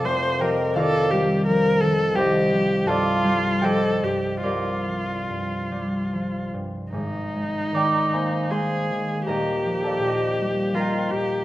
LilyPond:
<<
  \new Staff \with { instrumentName = "Harp" } { \time 3/4 \key c \dorian \tempo 4 = 80 << { a''8 g''8 f''2 | g''4 a''4 g''4 | d''2. | r4 d'''8 c'''8 c'''4 |
bes''8. a''16 g''4 bes''4 | } \\ { <f' g' a' bes' d'' ees'' f''>8 <g' c'' ees''>8 <f' bes' d''>2 | <g' c'' ees''>4 <a' d'' f''>4 <g' c'' ees''>4 | <g' bes'>2.~ | <g' bes'>4 <d'' g'' bes''>8 <c'' f'' aes''>8 <c'' f'' aes''>4 |
<bes' ees'' g''>8. <a' d'' f''>16 <g' c'' ees''>4 <bes' ees'' g''>4 | } >> }
  \new Staff \with { instrumentName = "Harp" } { \clef bass \time 3/4 \key c \dorian <f,, f, f>8 f8 ees8 g8 f8 ees8 | c,8 f8 g,8 g8 f8 g,8 | c,8 f8 g,8 g8 f8 g,8 | <aes,, aes,>8 aes8 ees8 bes8 aes8 ees8 |
<ees,, ees,>8 f8 bes,8 g8 f8 bes,8 | }
  \new Staff \with { instrumentName = "Viola" } { \time 3/4 \key c \dorian c''8 bes'8 a'8 g'8 bes'8 a'8 | g'4 f'4 a'8 g'8 | f'2~ f'8 r8 | ees'2 aes'4 |
g'2 f'8 g'8 | }
>>